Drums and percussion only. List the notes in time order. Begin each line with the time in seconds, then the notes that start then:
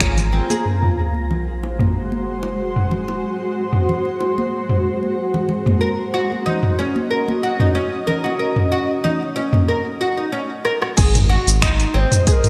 0.00 finger snap, kick, closed hi-hat, shaker
0.17 closed hi-hat, high bongo, low conga, shaker
0.32 low conga
0.50 closed hi-hat, high conga, shaker
0.83 mid tom
1.14 high conga
1.31 low conga
1.63 high bongo
1.79 mid tom, high conga
2.12 high conga
2.43 high bongo
2.76 mid tom
2.91 low conga
3.08 high bongo
3.73 mid tom
3.89 low conga
4.05 high bongo
4.21 high bongo
4.38 high conga
4.69 mid tom
5.03 high conga
5.34 low conga
5.49 low conga
5.66 mid tom, high conga
6.32 high conga
6.47 low conga
6.63 mid tom
6.80 high bongo
6.96 high conga
7.28 high conga
7.60 mid tom, high bongo
8.08 low conga
8.26 high bongo
8.56 mid tom
9.05 low conga
9.22 high bongo
9.37 high bongo
9.53 mid tom, high conga
10.65 cross-stick
10.82 cross-stick
10.97 kick, closed hi-hat, crash, shaker
11.15 closed hi-hat, mid tom, shaker
11.47 closed hi-hat, shaker
11.62 finger snap, kick, closed hi-hat, shaker
11.80 closed hi-hat, shaker
12.12 closed hi-hat, mid tom, shaker
12.27 kick, closed hi-hat, shaker
12.44 closed hi-hat, shaker